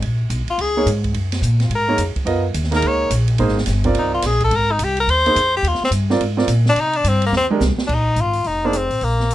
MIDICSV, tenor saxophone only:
0, 0, Header, 1, 2, 480
1, 0, Start_track
1, 0, Tempo, 280636
1, 58, Time_signature, 4, 2, 24, 8
1, 15991, End_track
2, 0, Start_track
2, 0, Title_t, "Tenor saxophone"
2, 0, Program_c, 0, 66
2, 856, Note_on_c, 0, 65, 87
2, 1039, Note_on_c, 0, 68, 90
2, 1065, Note_off_c, 0, 65, 0
2, 1507, Note_off_c, 0, 68, 0
2, 2796, Note_on_c, 0, 65, 52
2, 2993, Note_on_c, 0, 70, 92
2, 3018, Note_off_c, 0, 65, 0
2, 3443, Note_off_c, 0, 70, 0
2, 4717, Note_on_c, 0, 70, 91
2, 4917, Note_on_c, 0, 73, 87
2, 4943, Note_off_c, 0, 70, 0
2, 5365, Note_off_c, 0, 73, 0
2, 6813, Note_on_c, 0, 63, 74
2, 7071, Note_off_c, 0, 63, 0
2, 7085, Note_on_c, 0, 65, 90
2, 7280, Note_on_c, 0, 68, 83
2, 7306, Note_off_c, 0, 65, 0
2, 7564, Note_off_c, 0, 68, 0
2, 7599, Note_on_c, 0, 69, 97
2, 7787, Note_on_c, 0, 70, 108
2, 7813, Note_off_c, 0, 69, 0
2, 8063, Note_on_c, 0, 63, 89
2, 8089, Note_off_c, 0, 70, 0
2, 8275, Note_on_c, 0, 67, 92
2, 8301, Note_off_c, 0, 63, 0
2, 8542, Note_off_c, 0, 67, 0
2, 8548, Note_on_c, 0, 70, 99
2, 8729, Note_on_c, 0, 72, 104
2, 8755, Note_off_c, 0, 70, 0
2, 9489, Note_off_c, 0, 72, 0
2, 9520, Note_on_c, 0, 67, 95
2, 9707, Note_on_c, 0, 65, 85
2, 9733, Note_off_c, 0, 67, 0
2, 9978, Note_off_c, 0, 65, 0
2, 9996, Note_on_c, 0, 60, 89
2, 10092, Note_off_c, 0, 60, 0
2, 11443, Note_on_c, 0, 62, 105
2, 11634, Note_on_c, 0, 63, 101
2, 11659, Note_off_c, 0, 62, 0
2, 11911, Note_on_c, 0, 62, 101
2, 11936, Note_off_c, 0, 63, 0
2, 12115, Note_on_c, 0, 60, 90
2, 12141, Note_off_c, 0, 62, 0
2, 12382, Note_off_c, 0, 60, 0
2, 12423, Note_on_c, 0, 58, 91
2, 12560, Note_off_c, 0, 58, 0
2, 12604, Note_on_c, 0, 60, 92
2, 12762, Note_off_c, 0, 60, 0
2, 13458, Note_on_c, 0, 62, 79
2, 13578, Note_on_c, 0, 63, 98
2, 13604, Note_off_c, 0, 62, 0
2, 14044, Note_on_c, 0, 65, 90
2, 14070, Note_off_c, 0, 63, 0
2, 14492, Note_on_c, 0, 63, 92
2, 14518, Note_off_c, 0, 65, 0
2, 14810, Note_on_c, 0, 62, 84
2, 14836, Note_off_c, 0, 63, 0
2, 15004, Note_on_c, 0, 60, 85
2, 15030, Note_off_c, 0, 62, 0
2, 15455, Note_on_c, 0, 58, 94
2, 15481, Note_off_c, 0, 60, 0
2, 15991, Note_off_c, 0, 58, 0
2, 15991, End_track
0, 0, End_of_file